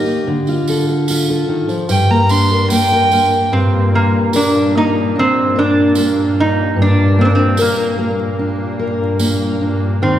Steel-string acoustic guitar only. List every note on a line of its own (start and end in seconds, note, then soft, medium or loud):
0.00 0.21 D#3 medium
0.00 0.27 A#3 medium
0.00 0.27 G4 medium
0.08 0.22 D#4 medium
0.27 1.48 D3 medium
0.49 1.09 F4 medium
0.69 0.88 A4 medium
0.89 1.29 A4 medium
1.10 1.85 F4 medium
1.30 1.85 A4 medium
1.48 1.69 D#3 medium
1.68 1.89 F3 medium
1.89 3.50 G2 medium
2.11 2.70 A#3 medium
2.31 3.32 D4 medium
2.51 2.91 A#4 medium
2.72 3.11 A#3 medium
2.92 3.48 A#4 medium
3.12 3.93 A#3 medium
3.52 6.75 G2 medium
3.94 4.75 A#3 medium
4.34 5.56 A#4 medium
4.75 5.97 A#3 medium
5.15 6.37 D4 medium
5.56 7.58 A#4 medium
5.97 7.18 A#3 medium
6.76 10.02 G2 medium
7.19 7.98 A#3 medium
7.58 8.78 A#4 medium
7.99 9.18 A#3 medium
8.39 9.60 D4 medium
8.79 9.97 A#4 medium
9.20 10.19 A#3 medium
9.61 10.02 D4 medium
10.02 10.19 D#3 medium